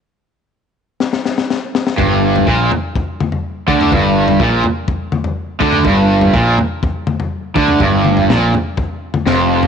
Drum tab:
SD |--------ooooo-oo|----------------|----------------|----------------|
T2 |----------------|----------o-----|----------o-----|----------o-----|
FT |----------------|o--o--o-o-oo---o|o--o--o-o-oo---o|o--o--o-o-oo---o|
BD |----------------|o---o---o-----o-|o---o---o-----o-|o---o---o-----o-|

SD |----o-------o---|
T2 |--o--------o----|
FT |o--o--o-o--o---o|
BD |o-------o-------|